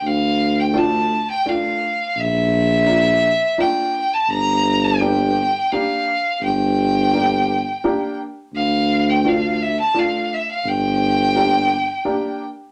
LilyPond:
<<
  \new Staff \with { instrumentName = "Violin" } { \time 3/4 \key g \minor \tempo 4 = 85 f''8. g''16 a''8. g''16 f''4 | e''2 g''8. a''16 | bes''8. g''4~ g''16 f''4 | g''2~ g''8 r8 |
f''8. g''16 f''8 e''16 a''16 f''8 e''16 f''16 | g''2~ g''8 r8 | }
  \new Staff \with { instrumentName = "Upright piano" } { \time 3/4 \key g \minor r4 <a d' f'>8 r8 <a d' f'>8 r8 | r4 <bes d' f'>8 r8 <bes d' f'>8 r8 | r4 <bes d' g'>8 r8 <bes d' g'>8 r8 | r4 <bes d' g'>8 r8 <bes d' g'>8 r8 |
r4 <a d' f'>8 r8 <a d' f'>8 r8 | r4 <bes d' g'>8 r8 <bes d' g'>8 r8 | }
  \new Staff \with { instrumentName = "Tuba" } { \clef bass \time 3/4 \key g \minor d,2. | bes,,2. | g,,2. | g,,2. |
d,2. | g,,2. | }
>>